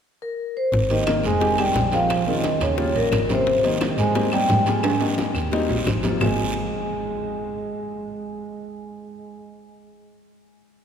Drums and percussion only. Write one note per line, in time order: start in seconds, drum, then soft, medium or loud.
0.72 high bongo medium
0.72 high conga soft
0.72 long guiro medium
0.90 high conga soft
0.90 high timbale medium
1.06 high bongo medium
1.06 high conga medium
1.06 high timbale medium
1.06 short guiro medium
1.06 claves medium
1.23 short guiro medium
1.40 high bongo medium
1.40 high conga soft
1.40 high timbale medium
1.40 long guiro medium
1.58 high conga soft
1.58 high timbale medium
1.58 claves medium
1.75 high bongo medium
1.75 low bongo medium
1.75 high conga medium
1.75 short guiro medium
1.92 high timbale medium
1.92 short guiro medium
2.09 high bongo medium
2.09 high conga soft
2.09 high timbale medium
2.09 long guiro medium
2.09 claves medium
2.27 high bongo soft
2.27 high conga soft
2.43 high bongo medium
2.43 high conga medium
2.43 high timbale medium
2.43 short guiro medium
2.61 high bongo soft
2.61 high conga soft
2.61 high timbale medium
2.61 short guiro medium
2.61 claves medium
2.78 high bongo medium
2.78 high conga soft
2.78 long guiro medium
2.95 high conga soft
2.95 high timbale medium
3.12 high bongo medium
3.12 low bongo medium
3.12 high conga medium
3.12 high timbale medium
3.12 short guiro medium
3.12 claves medium
3.29 high bongo soft
3.29 high conga medium
3.29 short guiro medium
3.47 high bongo medium
3.47 high conga soft
3.47 long guiro medium
3.64 high conga soft
3.64 high timbale medium
3.81 high bongo medium
3.81 high conga medium
3.81 high timbale medium
3.81 short guiro medium
3.81 claves medium
3.98 short guiro medium
4.15 high bongo medium
4.15 high conga soft
4.15 high timbale medium
4.15 long guiro medium
4.32 high conga soft
4.32 high timbale medium
4.32 claves medium
4.49 high bongo medium
4.49 low bongo medium
4.49 high conga medium
4.49 short guiro medium
4.66 high conga medium
4.66 high timbale medium
4.66 short guiro medium
4.83 high bongo medium
4.83 high conga soft
4.83 high timbale medium
4.83 long guiro medium
4.83 claves medium
5.01 high bongo soft
5.01 high conga soft
5.01 high timbale medium
5.18 high bongo soft
5.18 high conga medium
5.18 short guiro medium
5.35 high bongo soft
5.35 high conga soft
5.35 short guiro medium
5.35 claves medium
5.52 high bongo medium
5.52 high conga soft
5.52 low timbale medium
5.52 long guiro medium
5.69 high conga soft
5.69 low timbale medium
5.86 high bongo medium
5.86 low bongo medium
5.86 high conga medium
5.86 short guiro medium
5.86 claves medium
6.03 high bongo soft
6.03 high conga medium
6.03 low timbale medium
6.03 short guiro medium
6.20 low bongo medium
6.20 low conga medium
6.20 low timbale loud
6.20 long guiro medium
6.20 claves medium